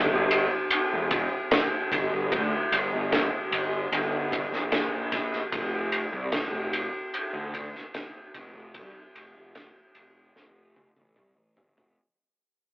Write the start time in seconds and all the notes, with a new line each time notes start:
0.13 G1
0.31 ride
0.70 ride
0.93 E1
1.11 kick, ride
1.51 snare, ride
1.92 G1, kick, ride
2.13 G1
2.32 D2, kick, ride
2.72 G1, ride
2.92 G1
3.12 snare, ride
3.51 G1, ride
3.92 G1, ride
4.32 kick, ride
4.52 A#1, snare
4.72 snare, ride
5.12 kick, snare, ride
5.33 snare
5.52 F1, kick, ride
5.92 ride
6.12 C2
6.32 F1, snare, ride
6.52 F1
6.73 ride
7.14 ride
7.33 D2
7.54 kick, ride
7.75 snare
7.94 snare, ride
8.34 F1, kick, ride
8.54 F1
8.74 C2, kick, ride
9.15 F1, ride
9.36 F1
9.55 snare, ride
9.95 F1, ride
10.36 F1, snare
10.76 high tom
10.96 A1, high tom
11.16 C2, mid tom
11.37 A1
11.56 G1, floor tom
11.76 F1, floor tom